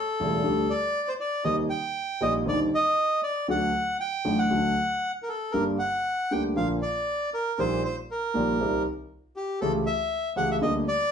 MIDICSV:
0, 0, Header, 1, 3, 480
1, 0, Start_track
1, 0, Key_signature, -2, "minor"
1, 0, Tempo, 509771
1, 1373, Time_signature, 4, 2, 24, 8
1, 7627, Tempo, 502934
1, 10505, End_track
2, 0, Start_track
2, 0, Title_t, "Bandoneon"
2, 0, Program_c, 0, 23
2, 0, Note_on_c, 0, 69, 78
2, 661, Note_on_c, 0, 74, 77
2, 686, Note_off_c, 0, 69, 0
2, 1017, Note_on_c, 0, 72, 67
2, 1027, Note_off_c, 0, 74, 0
2, 1071, Note_off_c, 0, 72, 0
2, 1131, Note_on_c, 0, 74, 77
2, 1354, Note_off_c, 0, 74, 0
2, 1357, Note_on_c, 0, 75, 79
2, 1468, Note_off_c, 0, 75, 0
2, 1599, Note_on_c, 0, 79, 79
2, 2091, Note_on_c, 0, 75, 82
2, 2097, Note_off_c, 0, 79, 0
2, 2199, Note_off_c, 0, 75, 0
2, 2340, Note_on_c, 0, 74, 82
2, 2446, Note_off_c, 0, 74, 0
2, 2586, Note_on_c, 0, 75, 81
2, 3023, Note_off_c, 0, 75, 0
2, 3046, Note_on_c, 0, 74, 73
2, 3269, Note_off_c, 0, 74, 0
2, 3299, Note_on_c, 0, 78, 76
2, 3739, Note_off_c, 0, 78, 0
2, 3770, Note_on_c, 0, 79, 84
2, 4129, Note_on_c, 0, 78, 77
2, 4139, Note_off_c, 0, 79, 0
2, 4817, Note_off_c, 0, 78, 0
2, 4921, Note_on_c, 0, 70, 47
2, 4979, Note_off_c, 0, 70, 0
2, 4980, Note_on_c, 0, 69, 62
2, 5194, Note_on_c, 0, 70, 65
2, 5205, Note_off_c, 0, 69, 0
2, 5309, Note_off_c, 0, 70, 0
2, 5451, Note_on_c, 0, 78, 76
2, 5948, Note_on_c, 0, 79, 70
2, 5955, Note_off_c, 0, 78, 0
2, 6057, Note_off_c, 0, 79, 0
2, 6181, Note_on_c, 0, 77, 75
2, 6292, Note_off_c, 0, 77, 0
2, 6424, Note_on_c, 0, 74, 71
2, 6873, Note_off_c, 0, 74, 0
2, 6911, Note_on_c, 0, 70, 70
2, 7150, Note_on_c, 0, 72, 76
2, 7158, Note_off_c, 0, 70, 0
2, 7373, Note_off_c, 0, 72, 0
2, 7387, Note_on_c, 0, 72, 63
2, 7496, Note_off_c, 0, 72, 0
2, 7638, Note_on_c, 0, 70, 62
2, 8321, Note_off_c, 0, 70, 0
2, 8832, Note_on_c, 0, 67, 61
2, 9055, Note_off_c, 0, 67, 0
2, 9068, Note_on_c, 0, 69, 69
2, 9177, Note_off_c, 0, 69, 0
2, 9306, Note_on_c, 0, 76, 82
2, 9754, Note_off_c, 0, 76, 0
2, 9792, Note_on_c, 0, 78, 81
2, 9915, Note_off_c, 0, 78, 0
2, 9931, Note_on_c, 0, 76, 72
2, 9980, Note_off_c, 0, 76, 0
2, 10035, Note_on_c, 0, 75, 81
2, 10142, Note_off_c, 0, 75, 0
2, 10282, Note_on_c, 0, 74, 90
2, 10505, Note_off_c, 0, 74, 0
2, 10505, End_track
3, 0, Start_track
3, 0, Title_t, "Grand piano"
3, 0, Program_c, 1, 0
3, 188, Note_on_c, 1, 28, 66
3, 189, Note_on_c, 1, 49, 56
3, 190, Note_on_c, 1, 40, 67
3, 193, Note_on_c, 1, 55, 49
3, 193, Note_on_c, 1, 64, 61
3, 196, Note_on_c, 1, 57, 53
3, 387, Note_off_c, 1, 28, 0
3, 387, Note_off_c, 1, 40, 0
3, 387, Note_off_c, 1, 49, 0
3, 389, Note_off_c, 1, 55, 0
3, 389, Note_off_c, 1, 64, 0
3, 390, Note_off_c, 1, 57, 0
3, 413, Note_on_c, 1, 50, 70
3, 415, Note_on_c, 1, 55, 53
3, 417, Note_on_c, 1, 57, 50
3, 418, Note_on_c, 1, 38, 66
3, 420, Note_on_c, 1, 67, 58
3, 619, Note_off_c, 1, 50, 0
3, 619, Note_off_c, 1, 55, 0
3, 620, Note_off_c, 1, 38, 0
3, 620, Note_off_c, 1, 57, 0
3, 621, Note_off_c, 1, 67, 0
3, 1359, Note_on_c, 1, 48, 63
3, 1364, Note_on_c, 1, 39, 74
3, 1364, Note_on_c, 1, 55, 53
3, 1365, Note_on_c, 1, 58, 56
3, 1366, Note_on_c, 1, 51, 72
3, 1367, Note_on_c, 1, 63, 67
3, 1566, Note_off_c, 1, 48, 0
3, 1569, Note_off_c, 1, 39, 0
3, 1569, Note_off_c, 1, 55, 0
3, 1569, Note_off_c, 1, 58, 0
3, 1570, Note_off_c, 1, 51, 0
3, 1570, Note_off_c, 1, 63, 0
3, 2076, Note_on_c, 1, 48, 56
3, 2082, Note_on_c, 1, 34, 71
3, 2082, Note_on_c, 1, 55, 47
3, 2083, Note_on_c, 1, 46, 68
3, 2085, Note_on_c, 1, 63, 62
3, 2086, Note_on_c, 1, 58, 52
3, 2285, Note_off_c, 1, 48, 0
3, 2287, Note_off_c, 1, 34, 0
3, 2287, Note_off_c, 1, 55, 0
3, 2288, Note_off_c, 1, 46, 0
3, 2289, Note_off_c, 1, 63, 0
3, 2290, Note_off_c, 1, 58, 0
3, 2309, Note_on_c, 1, 50, 55
3, 2313, Note_on_c, 1, 39, 71
3, 2315, Note_on_c, 1, 55, 51
3, 2318, Note_on_c, 1, 51, 72
3, 2320, Note_on_c, 1, 60, 54
3, 2320, Note_on_c, 1, 63, 68
3, 2522, Note_off_c, 1, 50, 0
3, 2524, Note_off_c, 1, 55, 0
3, 2525, Note_off_c, 1, 39, 0
3, 2526, Note_off_c, 1, 51, 0
3, 2527, Note_off_c, 1, 60, 0
3, 2527, Note_off_c, 1, 63, 0
3, 3278, Note_on_c, 1, 54, 57
3, 3279, Note_on_c, 1, 50, 66
3, 3280, Note_on_c, 1, 38, 76
3, 3285, Note_on_c, 1, 57, 55
3, 3288, Note_on_c, 1, 66, 69
3, 3484, Note_off_c, 1, 54, 0
3, 3485, Note_off_c, 1, 38, 0
3, 3485, Note_off_c, 1, 50, 0
3, 3488, Note_off_c, 1, 57, 0
3, 3489, Note_off_c, 1, 66, 0
3, 4000, Note_on_c, 1, 33, 59
3, 4000, Note_on_c, 1, 57, 51
3, 4001, Note_on_c, 1, 50, 55
3, 4002, Note_on_c, 1, 45, 62
3, 4002, Note_on_c, 1, 66, 60
3, 4005, Note_on_c, 1, 54, 53
3, 4205, Note_off_c, 1, 33, 0
3, 4206, Note_off_c, 1, 50, 0
3, 4206, Note_off_c, 1, 57, 0
3, 4207, Note_off_c, 1, 45, 0
3, 4207, Note_off_c, 1, 66, 0
3, 4208, Note_off_c, 1, 54, 0
3, 4241, Note_on_c, 1, 50, 62
3, 4243, Note_on_c, 1, 38, 72
3, 4243, Note_on_c, 1, 54, 51
3, 4248, Note_on_c, 1, 66, 56
3, 4249, Note_on_c, 1, 57, 52
3, 4448, Note_off_c, 1, 38, 0
3, 4448, Note_off_c, 1, 50, 0
3, 4448, Note_off_c, 1, 54, 0
3, 4450, Note_off_c, 1, 66, 0
3, 4451, Note_off_c, 1, 57, 0
3, 5212, Note_on_c, 1, 31, 69
3, 5214, Note_on_c, 1, 55, 51
3, 5215, Note_on_c, 1, 43, 71
3, 5216, Note_on_c, 1, 50, 59
3, 5216, Note_on_c, 1, 67, 64
3, 5219, Note_on_c, 1, 58, 51
3, 5420, Note_off_c, 1, 31, 0
3, 5421, Note_off_c, 1, 43, 0
3, 5421, Note_off_c, 1, 55, 0
3, 5422, Note_off_c, 1, 50, 0
3, 5422, Note_off_c, 1, 67, 0
3, 5423, Note_off_c, 1, 58, 0
3, 5943, Note_on_c, 1, 50, 63
3, 5947, Note_on_c, 1, 55, 49
3, 5949, Note_on_c, 1, 38, 59
3, 5951, Note_on_c, 1, 58, 46
3, 5954, Note_on_c, 1, 67, 64
3, 6151, Note_off_c, 1, 38, 0
3, 6151, Note_off_c, 1, 55, 0
3, 6152, Note_off_c, 1, 50, 0
3, 6152, Note_off_c, 1, 58, 0
3, 6154, Note_off_c, 1, 67, 0
3, 6177, Note_on_c, 1, 46, 64
3, 6178, Note_on_c, 1, 50, 55
3, 6181, Note_on_c, 1, 58, 52
3, 6182, Note_on_c, 1, 65, 56
3, 6183, Note_on_c, 1, 34, 62
3, 6184, Note_on_c, 1, 53, 47
3, 6387, Note_off_c, 1, 46, 0
3, 6387, Note_off_c, 1, 50, 0
3, 6388, Note_off_c, 1, 58, 0
3, 6389, Note_off_c, 1, 65, 0
3, 6390, Note_off_c, 1, 34, 0
3, 6390, Note_off_c, 1, 53, 0
3, 7140, Note_on_c, 1, 46, 74
3, 7140, Note_on_c, 1, 55, 51
3, 7144, Note_on_c, 1, 51, 50
3, 7146, Note_on_c, 1, 34, 77
3, 7147, Note_on_c, 1, 67, 68
3, 7148, Note_on_c, 1, 58, 58
3, 7347, Note_off_c, 1, 55, 0
3, 7349, Note_off_c, 1, 51, 0
3, 7350, Note_off_c, 1, 34, 0
3, 7350, Note_off_c, 1, 67, 0
3, 7351, Note_off_c, 1, 46, 0
3, 7351, Note_off_c, 1, 58, 0
3, 7855, Note_on_c, 1, 46, 65
3, 7859, Note_on_c, 1, 51, 54
3, 7862, Note_on_c, 1, 58, 55
3, 7864, Note_on_c, 1, 34, 67
3, 7865, Note_on_c, 1, 55, 48
3, 7866, Note_on_c, 1, 67, 66
3, 8069, Note_off_c, 1, 51, 0
3, 8070, Note_off_c, 1, 46, 0
3, 8070, Note_off_c, 1, 58, 0
3, 8071, Note_off_c, 1, 34, 0
3, 8072, Note_off_c, 1, 55, 0
3, 8072, Note_off_c, 1, 67, 0
3, 8108, Note_on_c, 1, 55, 49
3, 8109, Note_on_c, 1, 60, 57
3, 8110, Note_on_c, 1, 36, 67
3, 8111, Note_on_c, 1, 48, 69
3, 8111, Note_on_c, 1, 51, 59
3, 8120, Note_on_c, 1, 67, 68
3, 8314, Note_off_c, 1, 55, 0
3, 8314, Note_off_c, 1, 60, 0
3, 8315, Note_off_c, 1, 36, 0
3, 8315, Note_off_c, 1, 48, 0
3, 8315, Note_off_c, 1, 51, 0
3, 8320, Note_off_c, 1, 67, 0
3, 9076, Note_on_c, 1, 37, 75
3, 9076, Note_on_c, 1, 67, 70
3, 9077, Note_on_c, 1, 52, 60
3, 9078, Note_on_c, 1, 57, 61
3, 9079, Note_on_c, 1, 49, 70
3, 9081, Note_on_c, 1, 61, 60
3, 9275, Note_off_c, 1, 67, 0
3, 9276, Note_off_c, 1, 37, 0
3, 9276, Note_off_c, 1, 52, 0
3, 9277, Note_off_c, 1, 49, 0
3, 9277, Note_off_c, 1, 57, 0
3, 9278, Note_off_c, 1, 61, 0
3, 9784, Note_on_c, 1, 37, 68
3, 9789, Note_on_c, 1, 49, 64
3, 9790, Note_on_c, 1, 61, 55
3, 9793, Note_on_c, 1, 52, 51
3, 9794, Note_on_c, 1, 57, 54
3, 9795, Note_on_c, 1, 67, 71
3, 9991, Note_off_c, 1, 37, 0
3, 9991, Note_off_c, 1, 49, 0
3, 9992, Note_off_c, 1, 61, 0
3, 9993, Note_off_c, 1, 52, 0
3, 9994, Note_off_c, 1, 57, 0
3, 9994, Note_off_c, 1, 67, 0
3, 10026, Note_on_c, 1, 50, 69
3, 10027, Note_on_c, 1, 55, 58
3, 10029, Note_on_c, 1, 38, 75
3, 10030, Note_on_c, 1, 58, 58
3, 10032, Note_on_c, 1, 67, 67
3, 10230, Note_off_c, 1, 55, 0
3, 10231, Note_off_c, 1, 50, 0
3, 10232, Note_off_c, 1, 38, 0
3, 10232, Note_off_c, 1, 58, 0
3, 10233, Note_off_c, 1, 67, 0
3, 10505, End_track
0, 0, End_of_file